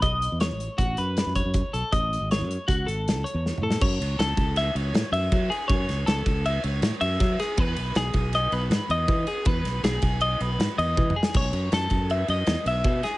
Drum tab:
CC |------------------------------|------------------------------|x-----------------------------|------------------------------|
RD |------------------------------|------------------------------|---x--x--x--x--x--x--x--x--x--|x--x--x--x--x--x--x--x--x--x--|
HH |x--x--x--x--x--x--x--x--x--x--|x--x--x--x--x--x--x--x--------|------------------------------|------------------------------|
SD |------o-----------o-----------|------o-----------o-----o---o-|------o-----o-----o-----------|---o--o-----------o-----o--o--|
T1 |------------------------------|------------------------------|------------------------------|------------------------------|
T2 |------------------------------|--------------------------o---|------------------------------|------------------------------|
BD |o-----------o--------o--o-----|o-----------o-----------------|o--------o--------------o-----|o--------o--------------o-----|

CC |------------------------------|------------------------------|x-----------------------------|
RD |x--x--x--x--x--x--x--x--x--x--|x--x--x--x--x--x--x--x--------|---x--x--x--x--x--x--x--x--x--|
HH |------------------------------|------------------------------|------------------------------|
SD |------o-----o-----o-----------|---o--o-----------o---------o-|------o-----------o--------o--|
T1 |------------------------------|------------------------o-----|------------------------------|
T2 |------------------------------|--------------------------o---|------------------------------|
BD |o--------o--------------o-----|o--------o--------------o-----|o--------o--------------o-----|